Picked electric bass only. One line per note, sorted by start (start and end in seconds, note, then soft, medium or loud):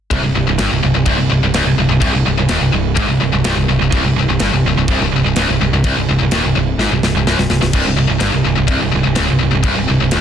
0.11 0.22 C1 loud
0.24 0.35 C1 medium
0.35 0.46 C1 medium
0.47 0.58 C1 medium
0.59 0.70 G1 medium
0.71 0.82 C1 medium
0.83 0.94 C1 medium
0.95 1.06 C1 medium
1.06 1.17 C1 medium
1.18 1.29 C1 medium
1.30 1.41 C1 medium
1.41 1.52 C1 medium
1.53 1.64 C#1 loud
1.64 1.75 C1 medium
1.76 1.88 C1 medium
1.88 2.00 C1 medium
2.02 2.12 C1 loud
2.13 2.24 C1 medium
2.25 2.36 C1 medium
2.37 2.48 C1 medium
2.50 2.60 D#1 medium
2.61 2.72 C1 medium
2.73 2.96 C1 medium
2.97 3.08 G#1 loud
3.09 3.20 C1 medium
3.20 3.32 C1 medium
3.32 3.43 C1 medium
3.44 3.56 C1 medium
3.56 3.68 C1 medium
3.68 3.80 C1 medium
3.80 3.92 C1 medium
3.92 4.02 C1 medium
4.03 4.15 C1 medium
4.16 4.27 C1 medium
4.28 4.39 C1 medium
4.40 4.51 G1 medium
4.52 4.63 C1 medium
4.65 4.76 C1 medium
4.76 4.87 C1 medium
4.88 4.99 C1 loud
5.00 5.11 C1 medium
5.13 5.24 C1 medium
5.24 5.35 C1 medium
5.37 5.47 C#1 loud
5.48 5.59 C1 medium
5.60 5.70 C1 medium
5.71 5.82 C1 medium
5.84 5.95 C1 loud
5.97 6.07 C1 medium
6.08 6.19 C1 medium
6.20 6.30 C1 medium
6.31 6.42 D#1 loud
6.43 6.54 C1 medium
6.55 6.77 C1 medium
6.78 6.89 G#1 medium
6.90 7.01 C1 medium
7.01 7.13 C1 medium
7.15 7.25 C1 medium
7.26 7.37 C1 medium
7.37 7.49 C1 medium
7.49 7.61 C1 medium
7.61 7.73 C1 medium
7.73 7.85 C1 loud
7.86 7.96 C1 medium
7.97 8.08 C1 medium
8.08 8.20 C1 medium
8.20 8.32 G1 loud
8.32 8.44 C1 medium
8.45 8.57 C1 medium
8.57 8.68 C1 medium
8.68 8.80 C1 loud
8.81 8.92 C1 medium
8.94 9.05 C1 medium
9.05 9.16 C1 medium
9.17 9.28 C#1 medium
9.30 9.40 C1 medium
9.41 9.52 C1 medium
9.52 9.63 C1 medium
9.63 9.75 C1 medium
9.76 9.88 C1 medium
9.89 10.00 C1 medium
10.01 10.12 C1 medium
10.12 10.21 D#1 medium